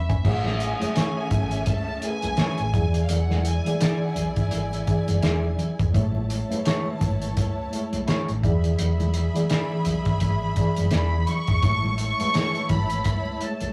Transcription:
Already playing: fingered electric bass E1, reed electric piano C#3 C#4 B4 E5 B5 C#6, violin section E5
0.09 reed electric piano G#5, kick, closed hi-hat
0.23 fingered electric bass A1, reed electric piano A3 E4 G#4 C#5, string section C#4 A4 E5, kick, crash, muted conga, low conga
0.45 snare, muted conga, high conga
0.60 violin section G#5, closed hi-hat
0.80 reed electric piano A3 E4 G#4 C#5, muted fingered electric bass stroke, closed hi-hat, high conga
0.95 clean electric guitar E4 G#4 C#5, snare, closed hi-hat, muted conga
1.31 fingered electric bass G#1, kick, closed hi-hat, low conga
1.51 closed hi-hat
1.66 fingered electric bass C#2, violin section A5, kick, closed hi-hat, muted conga, high conga
2.01 reed electric piano A3 E4 G#4 A#4, closed hi-hat
2.05 violin section G#5
2.10 reed electric piano B4
2.22 fingered electric bass B1, closed hi-hat, high conga
2.37 clean electric guitar E4 G#4 C#5, snare, closed hi-hat, high conga
2.58 fingered electric bass A1, closed hi-hat, muted conga
2.73 fingered electric bass E1, reed electric piano E3 E4 G#4 D5, string section E4 D5 G#5, kick, closed hi-hat, low conga
2.94 closed hi-hat
3.05 violin section F5, closed hi-hat
3.10 fingered electric bass E1, violin section F#5, muted conga, low conga
3.30 snare, muted conga, high conga
3.45 violin section G#5, closed hi-hat
3.65 reed electric piano E3 E4 G#4 D5, closed hi-hat, high conga
3.80 clean electric guitar E4 G#4 D5, violin section A5, snare, closed hi-hat, muted conga
3.92 violin section G#5
4.02 violin section F#5
4.11 violin section G#5
4.16 fingered electric bass B1, closed hi-hat, low conga
4.36 kick, closed hi-hat
4.51 fingered electric bass G#1, closed hi-hat, high conga
4.71 closed hi-hat, muted conga
4.86 reed electric piano E3 E4 G#4 D5, kick, closed hi-hat
5.08 fingered electric bass F#1, closed hi-hat, high conga
5.23 fingered electric bass E1, clean electric guitar E4 G#4 D5, snare, closed hi-hat, high conga
5.43 muted conga
5.58 closed hi-hat, low conga
5.79 fingered electric bass E1, kick, closed hi-hat
5.93 fingered electric bass A1, reed electric piano G#3 A3 E4 C#5, string section E4 C#5 A5, kick, closed hi-hat, low conga
6.15 muted conga, high conga
6.30 closed hi-hat
6.49 reed electric piano G#3 A3 E4 B4, muted fingered electric bass stroke, closed hi-hat, high conga
6.59 reed electric piano C#5
6.65 clean electric guitar E4 G#4 C#5, snare, closed hi-hat
6.86 muted conga
7.01 fingered electric bass G#1, kick, closed hi-hat, low conga
7.22 closed hi-hat
7.36 fingered electric bass C#2, kick, closed hi-hat, muted conga, high conga
7.70 reed electric piano G#3 A3 E4 C#5, closed hi-hat
7.93 fingered electric bass B1, closed hi-hat, high conga
8.07 clean electric guitar E4 G#4 C#5, snare, closed hi-hat, muted conga, high conga
8.28 fingered electric bass A1, closed hi-hat, muted conga
8.42 fingered electric bass E1, reed electric piano E3 E4 G#4 D5, string section G#4 E5 B5, kick, closed hi-hat, low conga
8.64 closed hi-hat
8.79 fingered electric bass E1, closed hi-hat, muted conga, low conga
9.00 closed hi-hat, muted conga, high conga
9.14 closed hi-hat
9.33 reed electric piano E3 E4 G#4 D5, closed hi-hat, high conga
9.50 clean electric guitar E4 G#4 D5, snare, closed hi-hat, muted conga
9.72 muted conga
9.85 fingered electric bass B1, closed hi-hat, low conga
10.05 kick, closed hi-hat
10.20 fingered electric bass G#1, kick, closed hi-hat, high conga
10.42 muted conga
10.55 reed electric piano E3 E4 G#4 D5, kick, closed hi-hat
10.76 fingered electric bass F#1, closed hi-hat, high conga
10.91 fingered electric bass E1, clean electric guitar E4 G#4 D5, snare, closed hi-hat, muted conga, high conga
10.95 violin section B5
11.27 violin section C#6, closed hi-hat, low conga
11.47 fingered electric bass E1, kick, closed hi-hat
11.62 fingered electric bass A1, reed electric piano G#3 A3 E4 C#5, string section E4 C#5 A5, kick, closed hi-hat, muted conga, low conga
11.85 high conga
11.98 violin section C#6, closed hi-hat
12.18 reed electric piano G#3 A3 E4 B4, muted fingered electric bass stroke, closed hi-hat, high conga
12.34 clean electric guitar E4 G#4 C#5, snare, closed hi-hat
12.55 closed hi-hat, muted conga
12.69 fingered electric bass G#1, violin section B5, kick, closed hi-hat, low conga
12.90 closed hi-hat
13.05 fingered electric bass C#2, kick, closed hi-hat, muted conga, high conga
13.25 muted conga
13.40 reed electric piano G#3 A3 E4 C#5, violin section A5, closed hi-hat
13.60 fingered electric bass B1, closed hi-hat, high conga

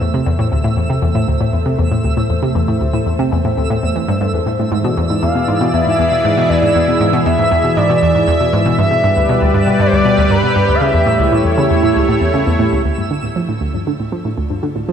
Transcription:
Already playing: analog synth pad A3 A4 C5 E5, synth texture E6
0.01 synth arpeggio sound E2
0.14 synth arpeggio sound C3
0.26 synth arpeggio sound E2
0.39 synth arpeggio sound A2
0.52 synth arpeggio sound D2
0.64 synth arpeggio sound A2
0.77 synth arpeggio sound E2
0.90 synth arpeggio sound C3
1.02 synth arpeggio sound E2
1.15 synth arpeggio sound A2
1.28 synth arpeggio sound D2
1.41 synth arpeggio sound A2
1.53 synth arpeggio sound E2
1.66 synth arpeggio sound C3
1.79 synth arpeggio sound E2
1.91 synth arpeggio sound A2
2.04 synth arpeggio sound D2
2.17 synth arpeggio sound A2
2.30 synth arpeggio sound E2
2.43 synth arpeggio sound C3
2.55 synth arpeggio sound E2
2.68 synth arpeggio sound A2
2.81 synth arpeggio sound D2
2.93 synth arpeggio sound A2
3.06 synth arpeggio sound E2
3.19 synth arpeggio sound C3
3.32 synth arpeggio sound E2
3.45 synth arpeggio sound A2
3.58 synth arpeggio sound D2
3.70 synth arpeggio sound A2
3.83 synth arpeggio sound E2
3.96 synth arpeggio sound E3
4.08 synth arpeggio sound G2
4.21 synth arpeggio sound G2
4.34 synth arpeggio sound E2
4.47 synth arpeggio sound A2
4.59 synth arpeggio sound A2
4.72 synth arpeggio sound G#2, analog synth pad E3 E4 G#4 D5
4.84 synth arpeggio sound B2
4.97 synth arpeggio sound E2
5.10 synth arpeggio sound G#2
5.22 synth arpeggio sound E2, analog synth lead F5
5.35 synth arpeggio sound B2
5.48 synth arpeggio sound G#2
5.61 synth arpeggio sound B2
5.73 synth arpeggio sound E2, analog synth lead E5
5.86 synth arpeggio sound G#2
5.99 synth arpeggio sound E2
6.12 synth arpeggio sound B2
6.25 synth arpeggio sound G#2
6.37 synth arpeggio sound B2
6.49 synth arpeggio sound E2, analog synth lead D5
6.62 synth arpeggio sound G#2
6.75 synth arpeggio sound E2, analog synth pad E5
6.88 synth arpeggio sound B2
7.00 synth arpeggio sound G#2
7.13 synth arpeggio sound B2
7.26 synth arpeggio sound E2, analog synth lead E5
7.39 synth arpeggio sound G#2
7.51 synth arpeggio sound E2
7.64 synth arpeggio sound B2
7.76 synth arpeggio sound G#2, analog synth lead D5
7.90 synth arpeggio sound B2
8.03 synth arpeggio sound E2
8.15 synth arpeggio sound G#2
8.28 synth arpeggio sound E2
8.41 synth arpeggio sound B2
8.53 synth arpeggio sound G#2
8.66 synth arpeggio sound B2
8.78 synth arpeggio sound G2, analog synth pad G3 G4 B4 D5, analog synth lead E5
8.91 synth arpeggio sound B2
9.04 synth arpeggio sound G2
9.17 synth arpeggio sound D2
9.29 synth arpeggio sound B2
9.42 synth arpeggio sound D2
9.54 synth arpeggio sound G2
9.67 synth arpeggio sound B2
9.80 synth arpeggio sound G2, analog synth lead D5
9.87 analog synth lead C5
9.92 synth arpeggio sound D2, analog synth lead D5
10.05 synth arpeggio sound B2
10.18 synth arpeggio sound D2
10.30 synth arpeggio sound G2, analog synth lead B4
10.43 synth arpeggio sound B2
10.56 synth arpeggio sound G2
10.68 synth arpeggio sound D2
10.74 analog synth lead F5
10.81 synth arpeggio sound C#3, analog synth pad A3 E4 C#5, analog synth lead E5
10.94 synth arpeggio sound E2
11.06 synth arpeggio sound A2
11.19 synth arpeggio sound C#2
11.32 synth arpeggio sound A2
11.45 synth arpeggio sound E2
11.58 synth arpeggio sound C#3
11.70 synth arpeggio sound E2
11.83 synth arpeggio sound A2
11.96 synth arpeggio sound C#2
12.09 synth arpeggio sound A2
12.21 synth arpeggio sound E2
12.34 synth arpeggio sound C#3
12.47 synth arpeggio sound E2
12.59 synth arpeggio sound A2
12.72 synth arpeggio sound C#2
12.85 synth arpeggio sound D2, analog synth pad D3 D4 F4 A4
12.98 synth arpeggio sound G2
13.11 synth arpeggio sound D3
13.23 synth arpeggio sound A2
13.36 synth arpeggio sound F3
13.49 synth arpeggio sound A2
13.61 synth arpeggio sound D2
13.74 synth arpeggio sound G2
13.87 synth arpeggio sound D3
14.00 synth arpeggio sound A2
14.12 synth arpeggio sound F3
14.25 synth arpeggio sound A2
14.37 synth arpeggio sound D2
14.50 synth arpeggio sound G2
14.63 synth arpeggio sound D3
14.76 synth arpeggio sound A2
14.89 synth arpeggio sound F3

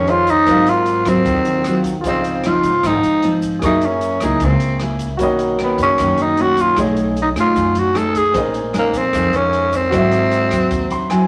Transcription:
Already playing: nylon-string guitar F2 D#3 G#3 C#4, upright bass F2, tenor saxophone C#4, grand piano G#4 A#4 C5 D#5
0.06 tenor saxophone F4, grand piano G#4 C5 C#5 D#5, closed hi-hat
0.27 tenor saxophone D#4, kick, closed hi-hat, shaker
0.46 upright bass G#1, nylon-string guitar G#2 F#3 C4 F4, grand piano A#4 C5, kick, cross-stick, closed hi-hat, shaker
0.50 grand piano F5
0.66 tenor saxophone F4, closed hi-hat, shaker
0.86 closed hi-hat, shaker
1.05 upright bass D#2, nylon-string guitar F#3 C4 F4, tenor saxophone C4, kick, cross-stick, closed hi-hat, shaker
1.25 upright bass D#2, nylon-string guitar D#3, kick, closed hi-hat, shaker
1.45 upright bass D#2, closed hi-hat, shaker
1.64 nylon-string guitar F#3 C4 F4, cross-stick, closed hi-hat, shaker
1.84 kick, closed hi-hat, shaker
2.01 upright bass C#2, grand piano F4 G#4, kick, closed hi-hat
2.05 nylon-string guitar C#3 F3 C4 D#4, tenor saxophone C4, grand piano C5 D#5, shaker
2.24 closed hi-hat, shaker
2.44 nylon-string guitar F3 C4 D#4, tenor saxophone F4, cross-stick, closed hi-hat
2.63 upright bass G#1, kick, closed hi-hat, shaker
2.83 upright bass G#1, nylon-string guitar G#2 F3 C4 D#4, tenor saxophone D#4, kick, cross-stick, closed hi-hat, shaker
3.03 upright bass G#1, closed hi-hat, shaker
3.22 nylon-string guitar F3 C4 D#4, closed hi-hat
3.42 kick, closed hi-hat, shaker
3.59 upright bass F#2, nylon-string guitar F#3 E4, grand piano G#4 A#4, kick, cross-stick, closed hi-hat, shaker
3.63 nylon-string guitar A#3 G#4, tenor saxophone D#4, grand piano E5 C#6
3.81 closed hi-hat, shaker
3.86 tenor saxophone C#4
4.01 closed hi-hat, shaker
4.20 upright bass C#2, nylon-string guitar A#3 E4 G#4, kick, cross-stick, closed hi-hat, shaker
4.25 tenor saxophone D#4
4.40 upright bass C#2, nylon-string guitar C#3, kick, closed hi-hat, shaker
4.45 tenor saxophone C4
4.60 closed hi-hat, shaker
4.80 nylon-string guitar A#3 E4 G#4, cross-stick, closed hi-hat
4.99 kick, closed hi-hat, shaker
5.17 upright bass B1, nylon-string guitar B2 D#3 A#3 C#4, grand piano F#4 A#4 C#5, kick, closed hi-hat, shaker
5.23 grand piano D#5
5.39 closed hi-hat, shaker
5.59 nylon-string guitar D#3 A#3 C#4, cross-stick, closed hi-hat
5.64 tenor saxophone B3
5.78 upright bass F#2, kick, closed hi-hat, shaker
5.83 tenor saxophone C#4
5.98 upright bass F#2, nylon-string guitar F#2 D#3 A#3 C#4, kick, cross-stick, closed hi-hat, shaker
6.17 upright bass F#2, closed hi-hat, shaker
6.23 tenor saxophone D#4
6.37 nylon-string guitar D#3 A#3 C#4, tenor saxophone F#4, closed hi-hat
6.57 tenor saxophone F4, kick, closed hi-hat, shaker
6.74 upright bass B1, nylon-string guitar B2 A3 D#4 G#4, grand piano G#4, kick, cross-stick, closed hi-hat, shaker
6.78 grand piano C#5 D#5
6.97 closed hi-hat, shaker
7.16 closed hi-hat, shaker
7.22 tenor saxophone D#4
7.36 upright bass F#2, nylon-string guitar A3 D#4 G#4, kick, cross-stick, closed hi-hat, shaker
7.40 tenor saxophone F4
7.54 nylon-string guitar F#2, upright bass F#2, kick, closed hi-hat, shaker
7.75 upright bass F#2, tenor saxophone F#4, closed hi-hat, shaker
7.95 nylon-string guitar A3 D#4 G#4, tenor saxophone A4, cross-stick, closed hi-hat, shaker
8.15 tenor saxophone G#4, kick, closed hi-hat, shaker
8.31 upright bass A#1, nylon-string guitar A#2 G#3 C#4, grand piano G#4 C5, kick, closed hi-hat, shaker
8.35 nylon-string guitar D#4, grand piano A#4 D#5
8.54 closed hi-hat, shaker
8.73 nylon-string guitar G#3 C#4 D#4, cross-stick, closed hi-hat, shaker
8.79 tenor saxophone A#3
8.93 upright bass F2, kick, closed hi-hat, shaker
8.98 tenor saxophone C4
9.13 upright bass F2, nylon-string guitar F3 G#3 C#4 D#4, kick, cross-stick, closed hi-hat, shaker
9.33 upright bass F2, tenor saxophone C#4, closed hi-hat, shaker
9.53 closed hi-hat
9.72 tenor saxophone C4, kick, closed hi-hat, shaker
9.90 upright bass G#1, nylon-string guitar G#2 F#3 C4 E4, grand piano F#4 C5, kick, cross-stick, closed hi-hat, shaker
9.94 grand piano D#5 E5
10.12 closed hi-hat, shaker
10.31 closed hi-hat, shaker
10.51 upright bass D#2, nylon-string guitar F#3 C4, kick, cross-stick, closed hi-hat, shaker
10.71 upright bass D#2, kick, closed hi-hat, shaker
10.90 upright bass D#2, grand piano C6, closed hi-hat, shaker
11.10 nylon-string guitar F#3 C4 E4, grand piano G#5, cross-stick, closed hi-hat

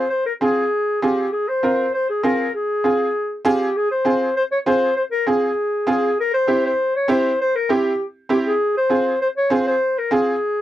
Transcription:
0.10 clarinet C5
0.26 clarinet A#4
0.41 upright piano C4 F4 G#4, clarinet G#4
1.02 upright piano C4 F4 G#4, clarinet G4
1.32 clarinet G#4
1.48 clarinet C5
1.63 upright piano C4 F4 A#4
1.94 clarinet C5
2.10 clarinet G#4
2.23 upright piano C4 F4 G#4, clarinet A#4
2.54 clarinet G#4
2.84 upright piano C4 F4 G#4
3.45 upright piano C4 F4 G#4, clarinet G4
3.76 clarinet G#4
3.91 clarinet C5
4.05 upright piano C4 F4 G#4
4.36 clarinet C5
4.52 clarinet C#5
4.66 upright piano C4 F4 G#4, clarinet C5
4.96 clarinet C5
5.12 clarinet A#4
5.27 upright piano C4 F4 G#4, clarinet G#4
5.87 upright piano C4 F4 G#4, clarinet G#4
6.20 clarinet A#4
6.34 clarinet C5
6.47 upright piano C4 E4 G4
6.66 clarinet C5
6.96 clarinet C#5
7.08 upright piano C4 E4 G4, clarinet C5
7.41 clarinet C5
7.55 clarinet A#4
7.69 upright piano C4 E4 G4, clarinet G4
8.29 upright piano C4 E4 G4, clarinet G4
8.47 clarinet G#4
8.77 clarinet C5
8.90 upright piano C4 F4 G#4
9.22 clarinet C5
9.37 clarinet C#5
9.50 upright piano C4 F4 G#4, clarinet C5
9.67 clarinet C5
9.98 clarinet A#4
10.11 upright piano C4 F4 G#4, clarinet G#4

